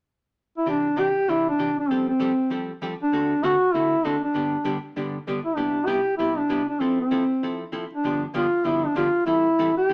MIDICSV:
0, 0, Header, 1, 3, 480
1, 0, Start_track
1, 0, Key_signature, 0, "major"
1, 0, Tempo, 307220
1, 1037, Time_signature, 4, 2, 24, 8
1, 15521, End_track
2, 0, Start_track
2, 0, Title_t, "Duduk"
2, 0, Program_c, 0, 69
2, 898, Note_on_c, 0, 64, 88
2, 1046, Note_off_c, 0, 64, 0
2, 1087, Note_on_c, 0, 62, 100
2, 1550, Note_on_c, 0, 67, 103
2, 1574, Note_off_c, 0, 62, 0
2, 2025, Note_on_c, 0, 64, 98
2, 2049, Note_off_c, 0, 67, 0
2, 2312, Note_off_c, 0, 64, 0
2, 2334, Note_on_c, 0, 62, 92
2, 2762, Note_off_c, 0, 62, 0
2, 2800, Note_on_c, 0, 62, 83
2, 2963, Note_on_c, 0, 60, 85
2, 2987, Note_off_c, 0, 62, 0
2, 3251, Note_off_c, 0, 60, 0
2, 3260, Note_on_c, 0, 60, 83
2, 4154, Note_off_c, 0, 60, 0
2, 4728, Note_on_c, 0, 62, 90
2, 5372, Note_on_c, 0, 66, 103
2, 5396, Note_off_c, 0, 62, 0
2, 5844, Note_on_c, 0, 64, 93
2, 5867, Note_off_c, 0, 66, 0
2, 6333, Note_on_c, 0, 62, 84
2, 6356, Note_off_c, 0, 64, 0
2, 6615, Note_off_c, 0, 62, 0
2, 6624, Note_on_c, 0, 62, 81
2, 7515, Note_off_c, 0, 62, 0
2, 8508, Note_on_c, 0, 64, 86
2, 8680, Note_on_c, 0, 62, 97
2, 8704, Note_off_c, 0, 64, 0
2, 9164, Note_on_c, 0, 67, 99
2, 9187, Note_off_c, 0, 62, 0
2, 9632, Note_off_c, 0, 67, 0
2, 9641, Note_on_c, 0, 64, 95
2, 9954, Note_on_c, 0, 62, 96
2, 9977, Note_off_c, 0, 64, 0
2, 10440, Note_off_c, 0, 62, 0
2, 10449, Note_on_c, 0, 62, 84
2, 10637, Note_on_c, 0, 60, 90
2, 10661, Note_off_c, 0, 62, 0
2, 10937, Note_off_c, 0, 60, 0
2, 10946, Note_on_c, 0, 60, 80
2, 11840, Note_off_c, 0, 60, 0
2, 12395, Note_on_c, 0, 62, 88
2, 12834, Note_off_c, 0, 62, 0
2, 13059, Note_on_c, 0, 65, 93
2, 13543, Note_on_c, 0, 64, 91
2, 13567, Note_off_c, 0, 65, 0
2, 13836, Note_on_c, 0, 62, 88
2, 13859, Note_off_c, 0, 64, 0
2, 14000, Note_off_c, 0, 62, 0
2, 14010, Note_on_c, 0, 65, 94
2, 14452, Note_off_c, 0, 65, 0
2, 14473, Note_on_c, 0, 64, 99
2, 15205, Note_off_c, 0, 64, 0
2, 15272, Note_on_c, 0, 67, 108
2, 15521, Note_off_c, 0, 67, 0
2, 15521, End_track
3, 0, Start_track
3, 0, Title_t, "Hollow-body jazz guitar"
3, 0, Program_c, 1, 26
3, 1029, Note_on_c, 1, 48, 55
3, 1033, Note_on_c, 1, 52, 61
3, 1044, Note_on_c, 1, 62, 57
3, 1048, Note_on_c, 1, 67, 63
3, 1354, Note_off_c, 1, 48, 0
3, 1356, Note_off_c, 1, 52, 0
3, 1362, Note_off_c, 1, 62, 0
3, 1364, Note_off_c, 1, 67, 0
3, 1504, Note_on_c, 1, 48, 74
3, 1515, Note_on_c, 1, 62, 74
3, 1520, Note_on_c, 1, 52, 72
3, 1528, Note_on_c, 1, 67, 72
3, 1687, Note_off_c, 1, 48, 0
3, 1693, Note_off_c, 1, 62, 0
3, 1695, Note_off_c, 1, 52, 0
3, 1700, Note_off_c, 1, 67, 0
3, 1998, Note_on_c, 1, 48, 51
3, 2005, Note_on_c, 1, 52, 62
3, 2018, Note_on_c, 1, 62, 62
3, 2021, Note_on_c, 1, 67, 65
3, 2318, Note_off_c, 1, 48, 0
3, 2321, Note_off_c, 1, 52, 0
3, 2328, Note_off_c, 1, 62, 0
3, 2329, Note_off_c, 1, 67, 0
3, 2482, Note_on_c, 1, 48, 66
3, 2486, Note_on_c, 1, 52, 64
3, 2494, Note_on_c, 1, 67, 72
3, 2504, Note_on_c, 1, 62, 71
3, 2655, Note_off_c, 1, 48, 0
3, 2658, Note_off_c, 1, 52, 0
3, 2661, Note_off_c, 1, 67, 0
3, 2666, Note_off_c, 1, 62, 0
3, 2978, Note_on_c, 1, 53, 54
3, 2984, Note_on_c, 1, 69, 62
3, 2985, Note_on_c, 1, 55, 56
3, 2986, Note_on_c, 1, 67, 61
3, 2990, Note_on_c, 1, 60, 63
3, 3287, Note_off_c, 1, 53, 0
3, 3290, Note_off_c, 1, 55, 0
3, 3290, Note_off_c, 1, 69, 0
3, 3291, Note_off_c, 1, 67, 0
3, 3293, Note_off_c, 1, 60, 0
3, 3432, Note_on_c, 1, 55, 75
3, 3433, Note_on_c, 1, 53, 74
3, 3441, Note_on_c, 1, 60, 77
3, 3442, Note_on_c, 1, 67, 72
3, 3450, Note_on_c, 1, 69, 77
3, 3609, Note_off_c, 1, 55, 0
3, 3610, Note_off_c, 1, 53, 0
3, 3614, Note_off_c, 1, 60, 0
3, 3615, Note_off_c, 1, 67, 0
3, 3619, Note_off_c, 1, 69, 0
3, 3908, Note_on_c, 1, 53, 58
3, 3918, Note_on_c, 1, 55, 54
3, 3923, Note_on_c, 1, 67, 63
3, 3924, Note_on_c, 1, 60, 57
3, 3933, Note_on_c, 1, 69, 63
3, 4231, Note_off_c, 1, 53, 0
3, 4236, Note_off_c, 1, 55, 0
3, 4239, Note_off_c, 1, 60, 0
3, 4239, Note_off_c, 1, 67, 0
3, 4243, Note_off_c, 1, 69, 0
3, 4402, Note_on_c, 1, 55, 73
3, 4403, Note_on_c, 1, 53, 69
3, 4412, Note_on_c, 1, 60, 73
3, 4416, Note_on_c, 1, 67, 72
3, 4421, Note_on_c, 1, 69, 71
3, 4574, Note_off_c, 1, 55, 0
3, 4575, Note_off_c, 1, 53, 0
3, 4579, Note_off_c, 1, 60, 0
3, 4581, Note_off_c, 1, 67, 0
3, 4583, Note_off_c, 1, 69, 0
3, 4876, Note_on_c, 1, 50, 53
3, 4892, Note_on_c, 1, 60, 58
3, 4895, Note_on_c, 1, 57, 57
3, 4898, Note_on_c, 1, 69, 59
3, 4899, Note_on_c, 1, 66, 62
3, 5195, Note_off_c, 1, 50, 0
3, 5203, Note_off_c, 1, 60, 0
3, 5204, Note_off_c, 1, 57, 0
3, 5205, Note_off_c, 1, 69, 0
3, 5206, Note_off_c, 1, 66, 0
3, 5359, Note_on_c, 1, 50, 74
3, 5365, Note_on_c, 1, 57, 70
3, 5368, Note_on_c, 1, 66, 77
3, 5374, Note_on_c, 1, 60, 84
3, 5381, Note_on_c, 1, 69, 77
3, 5532, Note_off_c, 1, 50, 0
3, 5535, Note_off_c, 1, 57, 0
3, 5537, Note_off_c, 1, 66, 0
3, 5539, Note_off_c, 1, 60, 0
3, 5543, Note_off_c, 1, 69, 0
3, 5849, Note_on_c, 1, 50, 56
3, 5849, Note_on_c, 1, 57, 62
3, 5858, Note_on_c, 1, 60, 58
3, 5859, Note_on_c, 1, 66, 60
3, 5867, Note_on_c, 1, 69, 61
3, 6161, Note_off_c, 1, 50, 0
3, 6161, Note_off_c, 1, 57, 0
3, 6165, Note_off_c, 1, 60, 0
3, 6166, Note_off_c, 1, 66, 0
3, 6170, Note_off_c, 1, 69, 0
3, 6321, Note_on_c, 1, 50, 60
3, 6323, Note_on_c, 1, 60, 66
3, 6323, Note_on_c, 1, 66, 72
3, 6324, Note_on_c, 1, 57, 63
3, 6334, Note_on_c, 1, 69, 73
3, 6493, Note_off_c, 1, 50, 0
3, 6494, Note_off_c, 1, 57, 0
3, 6494, Note_off_c, 1, 60, 0
3, 6494, Note_off_c, 1, 66, 0
3, 6499, Note_off_c, 1, 69, 0
3, 6780, Note_on_c, 1, 43, 53
3, 6790, Note_on_c, 1, 50, 54
3, 6791, Note_on_c, 1, 55, 64
3, 6792, Note_on_c, 1, 59, 62
3, 6804, Note_on_c, 1, 62, 59
3, 6809, Note_on_c, 1, 67, 64
3, 7106, Note_off_c, 1, 43, 0
3, 7111, Note_off_c, 1, 50, 0
3, 7112, Note_off_c, 1, 55, 0
3, 7113, Note_off_c, 1, 59, 0
3, 7118, Note_off_c, 1, 62, 0
3, 7121, Note_off_c, 1, 67, 0
3, 7254, Note_on_c, 1, 43, 68
3, 7261, Note_on_c, 1, 50, 77
3, 7262, Note_on_c, 1, 55, 75
3, 7262, Note_on_c, 1, 59, 72
3, 7269, Note_on_c, 1, 62, 70
3, 7272, Note_on_c, 1, 67, 78
3, 7439, Note_off_c, 1, 43, 0
3, 7443, Note_off_c, 1, 50, 0
3, 7443, Note_off_c, 1, 55, 0
3, 7443, Note_off_c, 1, 59, 0
3, 7447, Note_off_c, 1, 62, 0
3, 7448, Note_off_c, 1, 67, 0
3, 7752, Note_on_c, 1, 43, 52
3, 7756, Note_on_c, 1, 50, 59
3, 7759, Note_on_c, 1, 55, 58
3, 7762, Note_on_c, 1, 59, 57
3, 7762, Note_on_c, 1, 62, 59
3, 7773, Note_on_c, 1, 67, 61
3, 8072, Note_off_c, 1, 43, 0
3, 8074, Note_off_c, 1, 50, 0
3, 8076, Note_off_c, 1, 55, 0
3, 8077, Note_off_c, 1, 62, 0
3, 8078, Note_off_c, 1, 59, 0
3, 8083, Note_off_c, 1, 67, 0
3, 8237, Note_on_c, 1, 43, 61
3, 8240, Note_on_c, 1, 50, 70
3, 8244, Note_on_c, 1, 55, 67
3, 8250, Note_on_c, 1, 59, 67
3, 8254, Note_on_c, 1, 62, 70
3, 8254, Note_on_c, 1, 67, 66
3, 8411, Note_off_c, 1, 43, 0
3, 8413, Note_off_c, 1, 50, 0
3, 8414, Note_off_c, 1, 55, 0
3, 8418, Note_off_c, 1, 59, 0
3, 8419, Note_off_c, 1, 62, 0
3, 8420, Note_off_c, 1, 67, 0
3, 8694, Note_on_c, 1, 48, 53
3, 8704, Note_on_c, 1, 55, 60
3, 8708, Note_on_c, 1, 59, 60
3, 8710, Note_on_c, 1, 64, 58
3, 8714, Note_on_c, 1, 67, 65
3, 9024, Note_off_c, 1, 48, 0
3, 9029, Note_off_c, 1, 55, 0
3, 9031, Note_off_c, 1, 59, 0
3, 9032, Note_off_c, 1, 64, 0
3, 9034, Note_off_c, 1, 67, 0
3, 9167, Note_on_c, 1, 48, 68
3, 9177, Note_on_c, 1, 55, 75
3, 9177, Note_on_c, 1, 59, 69
3, 9181, Note_on_c, 1, 64, 83
3, 9187, Note_on_c, 1, 67, 84
3, 9357, Note_off_c, 1, 48, 0
3, 9361, Note_off_c, 1, 55, 0
3, 9362, Note_off_c, 1, 59, 0
3, 9363, Note_off_c, 1, 64, 0
3, 9367, Note_off_c, 1, 67, 0
3, 9667, Note_on_c, 1, 55, 54
3, 9672, Note_on_c, 1, 48, 57
3, 9675, Note_on_c, 1, 59, 60
3, 9683, Note_on_c, 1, 64, 65
3, 9690, Note_on_c, 1, 67, 60
3, 9991, Note_off_c, 1, 55, 0
3, 9994, Note_off_c, 1, 48, 0
3, 9995, Note_off_c, 1, 59, 0
3, 9999, Note_off_c, 1, 64, 0
3, 10003, Note_off_c, 1, 67, 0
3, 10142, Note_on_c, 1, 48, 67
3, 10152, Note_on_c, 1, 59, 64
3, 10154, Note_on_c, 1, 55, 70
3, 10157, Note_on_c, 1, 64, 74
3, 10171, Note_on_c, 1, 67, 70
3, 10325, Note_off_c, 1, 48, 0
3, 10330, Note_off_c, 1, 59, 0
3, 10331, Note_off_c, 1, 55, 0
3, 10332, Note_off_c, 1, 64, 0
3, 10339, Note_off_c, 1, 67, 0
3, 10627, Note_on_c, 1, 53, 56
3, 10639, Note_on_c, 1, 64, 56
3, 10640, Note_on_c, 1, 60, 60
3, 10649, Note_on_c, 1, 69, 61
3, 10952, Note_off_c, 1, 53, 0
3, 10958, Note_off_c, 1, 60, 0
3, 10958, Note_off_c, 1, 64, 0
3, 10963, Note_off_c, 1, 69, 0
3, 11110, Note_on_c, 1, 53, 69
3, 11110, Note_on_c, 1, 60, 73
3, 11122, Note_on_c, 1, 69, 73
3, 11123, Note_on_c, 1, 64, 73
3, 11289, Note_off_c, 1, 53, 0
3, 11289, Note_off_c, 1, 60, 0
3, 11295, Note_off_c, 1, 69, 0
3, 11296, Note_off_c, 1, 64, 0
3, 11610, Note_on_c, 1, 53, 54
3, 11610, Note_on_c, 1, 64, 62
3, 11614, Note_on_c, 1, 60, 60
3, 11627, Note_on_c, 1, 69, 61
3, 11924, Note_off_c, 1, 53, 0
3, 11924, Note_off_c, 1, 64, 0
3, 11926, Note_off_c, 1, 60, 0
3, 11932, Note_off_c, 1, 69, 0
3, 12065, Note_on_c, 1, 53, 63
3, 12067, Note_on_c, 1, 60, 66
3, 12079, Note_on_c, 1, 64, 69
3, 12080, Note_on_c, 1, 69, 66
3, 12248, Note_off_c, 1, 53, 0
3, 12249, Note_off_c, 1, 60, 0
3, 12255, Note_off_c, 1, 64, 0
3, 12255, Note_off_c, 1, 69, 0
3, 12558, Note_on_c, 1, 50, 56
3, 12562, Note_on_c, 1, 43, 57
3, 12567, Note_on_c, 1, 53, 59
3, 12574, Note_on_c, 1, 59, 61
3, 12580, Note_on_c, 1, 62, 63
3, 12583, Note_on_c, 1, 67, 63
3, 12879, Note_off_c, 1, 50, 0
3, 12881, Note_off_c, 1, 43, 0
3, 12884, Note_off_c, 1, 53, 0
3, 12887, Note_off_c, 1, 59, 0
3, 12890, Note_off_c, 1, 62, 0
3, 12891, Note_off_c, 1, 67, 0
3, 13027, Note_on_c, 1, 50, 73
3, 13032, Note_on_c, 1, 43, 78
3, 13036, Note_on_c, 1, 53, 72
3, 13039, Note_on_c, 1, 59, 84
3, 13042, Note_on_c, 1, 67, 87
3, 13044, Note_on_c, 1, 62, 76
3, 13210, Note_off_c, 1, 50, 0
3, 13212, Note_off_c, 1, 43, 0
3, 13214, Note_off_c, 1, 53, 0
3, 13216, Note_off_c, 1, 59, 0
3, 13217, Note_off_c, 1, 67, 0
3, 13218, Note_off_c, 1, 62, 0
3, 13499, Note_on_c, 1, 43, 59
3, 13503, Note_on_c, 1, 50, 60
3, 13512, Note_on_c, 1, 53, 65
3, 13513, Note_on_c, 1, 59, 59
3, 13515, Note_on_c, 1, 62, 58
3, 13521, Note_on_c, 1, 67, 62
3, 13831, Note_off_c, 1, 43, 0
3, 13833, Note_off_c, 1, 50, 0
3, 13837, Note_off_c, 1, 53, 0
3, 13838, Note_off_c, 1, 59, 0
3, 13839, Note_off_c, 1, 62, 0
3, 13841, Note_off_c, 1, 67, 0
3, 13981, Note_on_c, 1, 43, 64
3, 13993, Note_on_c, 1, 50, 73
3, 13998, Note_on_c, 1, 62, 73
3, 14000, Note_on_c, 1, 53, 70
3, 14002, Note_on_c, 1, 59, 70
3, 14006, Note_on_c, 1, 67, 74
3, 14168, Note_off_c, 1, 43, 0
3, 14173, Note_off_c, 1, 50, 0
3, 14177, Note_off_c, 1, 53, 0
3, 14177, Note_off_c, 1, 62, 0
3, 14178, Note_off_c, 1, 59, 0
3, 14180, Note_off_c, 1, 67, 0
3, 14461, Note_on_c, 1, 45, 60
3, 14473, Note_on_c, 1, 55, 57
3, 14476, Note_on_c, 1, 52, 59
3, 14479, Note_on_c, 1, 60, 57
3, 14480, Note_on_c, 1, 64, 61
3, 14490, Note_on_c, 1, 69, 65
3, 14793, Note_off_c, 1, 45, 0
3, 14799, Note_off_c, 1, 55, 0
3, 14800, Note_off_c, 1, 52, 0
3, 14802, Note_off_c, 1, 60, 0
3, 14802, Note_off_c, 1, 64, 0
3, 14807, Note_off_c, 1, 69, 0
3, 14979, Note_on_c, 1, 52, 69
3, 14983, Note_on_c, 1, 45, 71
3, 14984, Note_on_c, 1, 60, 74
3, 14989, Note_on_c, 1, 55, 69
3, 14995, Note_on_c, 1, 64, 77
3, 14995, Note_on_c, 1, 69, 77
3, 15148, Note_off_c, 1, 52, 0
3, 15150, Note_off_c, 1, 45, 0
3, 15151, Note_off_c, 1, 60, 0
3, 15153, Note_off_c, 1, 55, 0
3, 15156, Note_off_c, 1, 64, 0
3, 15156, Note_off_c, 1, 69, 0
3, 15454, Note_on_c, 1, 45, 55
3, 15461, Note_on_c, 1, 64, 62
3, 15466, Note_on_c, 1, 52, 61
3, 15466, Note_on_c, 1, 55, 56
3, 15467, Note_on_c, 1, 60, 60
3, 15469, Note_on_c, 1, 69, 58
3, 15521, Note_off_c, 1, 45, 0
3, 15521, Note_off_c, 1, 52, 0
3, 15521, Note_off_c, 1, 55, 0
3, 15521, Note_off_c, 1, 60, 0
3, 15521, Note_off_c, 1, 64, 0
3, 15521, Note_off_c, 1, 69, 0
3, 15521, End_track
0, 0, End_of_file